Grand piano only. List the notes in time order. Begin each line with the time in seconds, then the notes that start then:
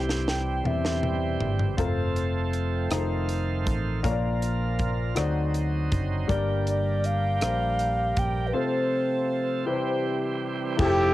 Already playing: C3 C4 E4 G4 C5
0.64 C4 D4 G4 D5
0.70 E4
1.77 C4 F4 A4 A#4
1.85 C5
2.91 D#4 F4 G#4 C5
2.98 A4
4.03 A#2 D4 F4 A#4 C#5
4.11 D5
5.15 D3 D#4 F#4 C5 D5
6.28 G2 D4 G4 A#4 D5
7.41 D4 G4 A#4 C5
8.53 C3 C4 F4 A4 C5
9.65 C3 C4 E4 G4 B4
9.73 C5
10.77 F3 E4 G4 G#4
10.85 A4